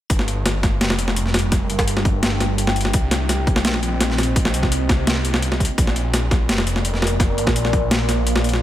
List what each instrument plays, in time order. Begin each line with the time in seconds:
0.10 detuned saw bass G1, ambient pad G3, kick, closed hi-hat
0.19 snare
0.28 closed hi-hat
0.38 ambient pad D4
0.44 ambient pad A#4, snare, closed hi-hat
0.60 ambient pad G5, kick, snare, closed hi-hat
0.81 detuned saw bass F1, snare, closed hi-hat
0.90 snare
0.99 closed hi-hat
1.08 snare
1.16 closed hi-hat
1.26 snare
1.34 snare, closed hi-hat
1.39 closed hi-hat
1.52 kick, snare, closed hi-hat
1.70 detuned saw bass G1, closed hi-hat
1.79 kick, snare
1.88 closed hi-hat
1.97 snare
2.05 kick, closed hi-hat
2.23 snare, closed hi-hat
2.40 snare, closed hi-hat
2.58 closed hi-hat
2.67 snare
2.76 closed hi-hat
2.81 closed hi-hat
2.85 snare
2.93 detuned saw bass C2, ambient pad C4, kick, closed hi-hat
3.11 snare, closed hi-hat
3.16 ambient pad C5
3.27 ambient pad D#5, snare, closed hi-hat
3.47 kick, closed hi-hat
3.56 snare
3.65 detuned saw bass A#1, snare, closed hi-hat
3.74 snare
3.83 closed hi-hat
4.01 snare, closed hi-hat
4.10 snare
4.18 snare, closed hi-hat
4.23 closed hi-hat
4.36 kick, closed hi-hat
4.45 snare
4.54 detuned saw bass C2, closed hi-hat
4.63 kick, snare
4.72 closed hi-hat
4.89 kick, snare, closed hi-hat
5.07 snare, closed hi-hat
5.25 detuned saw bass C2, closed hi-hat
5.34 snare
5.42 closed hi-hat
5.52 snare
5.60 kick, closed hi-hat
5.65 closed hi-hat
5.78 detuned saw bass A#1, ambient pad A#3, kick, closed hi-hat
5.87 snare
5.94 ambient pad A#4, closed hi-hat
6.14 ambient pad D5, snare, closed hi-hat
6.31 kick, snare, closed hi-hat
6.49 detuned saw bass F1, snare, closed hi-hat
6.58 snare
6.67 closed hi-hat
6.76 ambient pad F5, snare
6.85 closed hi-hat
6.94 snare
7.02 snare
7.07 closed hi-hat
7.20 kick, snare, closed hi-hat
7.38 detuned saw bass A#1, closed hi-hat
7.47 kick, snare
7.56 closed hi-hat
7.65 snare
7.73 kick, closed hi-hat
7.91 snare, closed hi-hat
8.09 snare, closed hi-hat
8.27 closed hi-hat
8.36 snare
8.44 closed hi-hat
8.49 closed hi-hat
8.54 snare